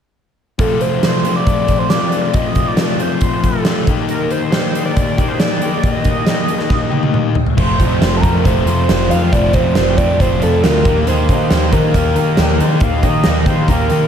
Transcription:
0.59 distorted electric guitar F2 C3 F3 A3 C4 F4, analog synth lead A4, kick, closed hi-hat
0.81 analog synth lead C5, closed hi-hat
1.03 snare, closed hi-hat
1.25 distorted electric guitar F2 C3 F3 A3 C4 F4, closed hi-hat
1.36 analog synth lead D5
1.47 kick, closed hi-hat
1.68 kick, closed hi-hat
1.79 analog synth lead C5
1.90 distorted electric guitar F2 C3 F3 A3 C4, analog synth lead D5, snare, closed hi-hat
1.94 distorted electric guitar F4
2.12 closed hi-hat
2.33 distorted electric guitar F2 C3 F3 A3 C4 F4, analog synth lead D#5, kick, closed hi-hat
2.55 kick, closed hi-hat
2.67 analog synth lead D5
2.77 snare, closed hi-hat
2.99 distorted electric guitar F2 C3 F3 A3 C4 F4, analog synth lead C5, closed hi-hat
3.21 analog synth lead C5, kick, closed hi-hat
3.44 analog synth lead A4, kick, closed hi-hat
3.64 distorted electric guitar F2 C3 F3 A3 C4 F4, snare, closed hi-hat
3.87 distorted electric guitar D#3 A#3 D#4 G4, kick, closed hi-hat
4.09 analog synth lead A#4, closed hi-hat
4.30 analog synth lead C5, closed hi-hat
4.51 distorted electric guitar D#3 A#3 D#4 G4, snare, closed hi-hat
4.75 closed hi-hat
4.85 analog synth lead D5
4.97 kick, closed hi-hat
5.18 distorted electric guitar D#3 A#3 D#4 G4, kick, closed hi-hat
5.28 analog synth lead C5
5.39 analog synth lead D5, snare, closed hi-hat
5.60 distorted electric guitar D#3 A#3 D#4 G4, closed hi-hat
5.81 analog synth lead D5, kick, closed hi-hat
5.92 analog synth lead D#5
6.04 kick, closed hi-hat
6.26 distorted electric guitar D#3 A#3 D#4 G4, snare, closed hi-hat
6.48 closed hi-hat
6.59 snare
6.70 kick, snare
6.90 distorted electric guitar D#3 A#3 D#4 G4, high tom
7.03 high tom
7.14 mid tom
7.35 floor tom
7.46 floor tom
7.57 picked electric bass F1, distorted electric guitar F2 C3 F3 A3 C4 F4, analog synth lead C5, kick, crash
7.80 picked electric bass F2, distorted electric guitar F3 A3 C4 F4, kick, closed hi-hat
8.02 picked electric bass F1, distorted electric guitar F3 A3 C4 F4, snare, closed hi-hat
8.17 analog synth lead A4
8.21 picked electric bass F2, distorted electric guitar F3 A3 C4 F4, analog synth lead A#4, kick, closed hi-hat
8.39 analog synth lead A#4
8.45 picked electric bass F1, distorted electric guitar F2 C3 F3 A3 C4 F4, analog synth lead C5, kick, closed hi-hat
8.66 picked electric bass F2, distorted electric guitar A3 C4 F4, closed hi-hat
8.71 distorted electric guitar F3
8.89 picked electric bass F1, distorted electric guitar F3 A3 C4 F4, snare, closed hi-hat
9.10 picked electric bass F2, overdriven electric guitar C4, analog synth lead F5, closed hi-hat
9.32 picked electric bass F1, distorted electric guitar F2 C3 F3 A3 C4 F4, analog synth lead D5, kick, closed hi-hat
9.53 picked electric bass F2, distorted electric guitar F3 A3 C4 F4, analog synth lead C5, kick, closed hi-hat
9.75 picked electric bass F1, distorted electric guitar F3 A3 C4, analog synth lead C5, snare, closed hi-hat
9.80 distorted electric guitar F4
9.97 picked electric bass F2, distorted electric guitar F3 A3 C4 F4, analog synth lead D5, kick, closed hi-hat
10.20 picked electric bass F1, distorted electric guitar F2 C3 F3 A3 C4 F4, analog synth lead C5, kick, closed hi-hat
10.40 picked electric bass F2, distorted electric guitar F3 A3 C4 F4, analog synth lead A4, closed hi-hat
10.62 picked electric bass D2, distorted electric guitar F3 A3 C4 F4, analog synth lead A#4, snare, closed hi-hat
10.84 picked electric bass D#2, distorted electric guitar D#3 A#3 D#4 G4, kick, closed hi-hat
11.07 picked electric bass D#2, distorted electric guitar D#3 A#3 D#4 G4, analog synth lead C5, closed hi-hat
11.29 picked electric bass D#3, distorted electric guitar A#3 D#4 G4, kick, closed hi-hat
11.51 picked electric bass D#2, distorted electric guitar D#3 A#3 D#4 G4, snare, closed hi-hat
11.71 picked electric bass D#3, overdriven electric guitar A#3, distorted electric guitar G4, analog synth lead A#4, kick, closed hi-hat
11.76 distorted electric guitar A#3 D#4
11.94 picked electric bass D#2, distorted electric guitar D#3 A#3, kick, closed hi-hat
11.98 distorted electric guitar D#4 G4
12.15 picked electric bass D#3, distorted electric guitar G4, closed hi-hat
12.20 distorted electric guitar A#3 D#4
12.37 picked electric bass D#2, distorted electric guitar D#3 A#3, overdriven electric guitar G4, snare, closed hi-hat
12.42 distorted electric guitar D#4 G4
12.60 picked electric bass D#3, overdriven electric guitar D#4, analog synth lead C5, closed hi-hat
12.80 picked electric bass D#2, distorted electric guitar D#3 A#3 D#4 G4, analog synth lead F5, kick, closed hi-hat
13.03 picked electric bass D#3, distorted electric guitar A#3 D#4 G4, analog synth lead D#5, kick, closed hi-hat
13.24 picked electric bass D#2, distorted electric guitar D#3 A#3 D#4, snare, closed hi-hat
13.29 distorted electric guitar G4
13.46 picked electric bass D#3, distorted electric guitar A#3 D#4 G4, analog synth lead C5, kick, closed hi-hat
13.68 picked electric bass D#2, distorted electric guitar D#3 A#3 D#4 G4, analog synth lead A#4, kick, closed hi-hat
13.90 picked electric bass D#3, distorted electric guitar A#3 D#4 G4, closed hi-hat

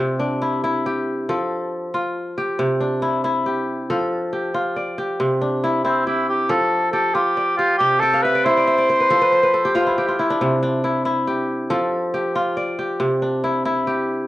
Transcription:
Already playing: kora C3 F4 G4 D5
0.20 kora D4
0.42 kora E4
0.64 kora E4
0.86 kora G4
1.29 kora F3 A4
1.94 kora F4
2.38 kora G4
2.59 kora C3
2.81 kora D4
3.02 kora E4
3.24 kora E4
3.46 kora G4
3.90 kora F3 A4
4.33 kora G4
4.54 kora F4
4.76 kora D5
4.98 kora G4
5.20 kora C3
5.42 kora D4
5.64 kora E4
5.85 cor anglais C4, kora E4
6.06 cor anglais E4, kora G4
6.29 cor anglais G4
6.49 kora F3 A4, cor anglais A4
6.92 kora G4, cor anglais A4
7.14 kora F4, cor anglais G4
7.37 kora D5
7.57 cor anglais F4, kora G4
7.78 kora C3, cor anglais G4
8.00 cor anglais A4, kora G5
8.14 kora F5
8.22 cor anglais B4, kora E5
8.35 kora D5
8.45 kora E4 E5, cor anglais C5
8.57 kora D5
8.67 kora E5
8.78 kora D5
8.89 kora C5
9.00 kora B4
9.10 kora F3 A4
9.21 kora B4
9.32 kora C5
9.43 kora B4
9.54 kora A4
9.65 kora G4
9.75 kora F4
9.87 kora E4
9.98 kora G4
10.08 kora F4
10.19 kora E4
10.30 kora D4
10.41 kora C3
10.63 kora D4
10.84 kora E4
11.05 kora E4
11.27 kora G4
11.70 kora F3 A4
12.14 kora G4
12.36 kora F4
12.57 kora D5
12.79 kora G4
13.00 kora C3
13.22 kora D4
13.44 kora E4
13.65 kora E4
13.87 kora G4

